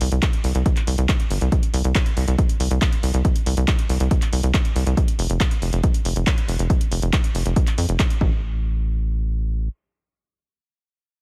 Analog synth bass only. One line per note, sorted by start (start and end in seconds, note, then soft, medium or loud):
0.01 0.09 C2 loud
0.12 0.20 C2 medium
0.44 0.53 C2 loud
0.55 0.63 C2 medium
0.87 0.96 C2 medium
0.98 1.06 C2 medium
1.31 1.39 G1 medium
1.41 1.50 C2 medium
1.74 1.82 C2 loud
1.85 1.93 C2 medium
2.17 2.25 C2 medium
2.28 2.36 C2 medium
2.60 2.68 C2 medium
2.71 2.79 C2 medium
3.03 3.12 C2 loud
3.14 3.22 C2 medium
3.46 3.55 C2 medium
3.57 3.66 C2 medium
3.89 3.98 C2 medium
4.00 4.09 C2 medium
4.33 4.41 C2 medium
4.43 4.52 C2 medium
4.76 4.84 C2 loud
4.86 4.95 C2 medium
5.19 5.27 F1 loud
5.30 5.38 F1 medium
5.62 5.70 F1 medium
5.73 5.81 F1 medium
6.05 6.14 F1 loud
6.16 6.24 F1 medium
6.48 6.57 F1 medium
6.59 6.68 F1 medium
6.91 7.00 F1 loud
7.02 7.11 F1 medium
7.35 7.43 F1 medium
7.46 7.54 F1 medium
7.78 7.86 F2 medium
7.89 7.97 F1 medium
8.21 9.68 A1 loud